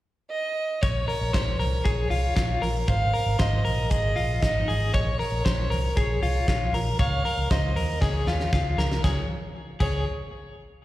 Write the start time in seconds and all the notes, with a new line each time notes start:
0.31 D#5
0.82 A#1 C#5, kick, closed hi-hat
1.08 A#4, open hi-hat
1.21 A#1
1.33 A#1 C5, kick, snare, closed hi-hat
1.59 C2 A#4, open hi-hat
1.84 A#1 G#4 C#5, kick, closed hi-hat
2.10 C2 F4, open hi-hat
2.36 A#1 F4, kick, snare, closed hi-hat
2.62 A#1 A#4, open hi-hat
2.88 G#1 C5 F5, kick, closed hi-hat
3.14 A#4, open hi-hat
3.26 G#1
3.39 G#1 C5 D#5, kick, snare, closed hi-hat
3.65 A#1 A#4, open hi-hat
3.90 G#1 G#4 D#5, kick, closed hi-hat
4.16 A#1 F4, open hi-hat
4.42 G#1 D#4 D#5, kick, snare, closed hi-hat
4.68 G#1 G#4, open hi-hat
4.94 A#1 C#5, kick, closed hi-hat
5.19 A#4, open hi-hat
5.32 A#1
5.45 A#1 C5, kick, snare, closed hi-hat
5.70 C2 A#4, open hi-hat
5.97 A#1 G#4 C#5, kick, closed hi-hat
6.22 C2 F4, open hi-hat
6.48 A#1 F4, kick, snare, closed hi-hat
6.73 A#1 A#4, open hi-hat
6.99 C#2 C#5 F5, kick, closed hi-hat
7.25 A#4, open hi-hat
7.37 C#2
7.51 C#2 C5 D#5, kick, snare, closed hi-hat
7.75 D#2 A#4, open hi-hat
8.01 C#2 G#4 C#5, kick, snare
8.27 D#2 F4, snare
8.40 snare
8.53 C#2 F4, kick, snare
8.78 C#2 A#4, snare
8.92 snare
9.04 C#2 G#4 C#5, kick, snare
9.80 C#2 G#4 C#5, kick, crash